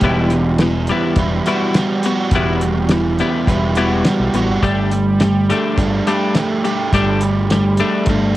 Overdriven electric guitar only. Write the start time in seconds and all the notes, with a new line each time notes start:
Already playing: G3 G4
0.04 E2
0.62 E3
0.89 G3
1.19 E4
1.46 F#4
1.75 G3
2.04 F#4
2.32 E2
2.90 E3
3.21 G3
3.48 E4
3.76 F#4
4.05 G3
4.36 F#4
4.64 G3
5.21 G3
5.50 A3
5.79 D4
6.08 G4
6.35 A3
6.65 G4
6.94 G3
7.51 G3
7.80 A3
8.09 D4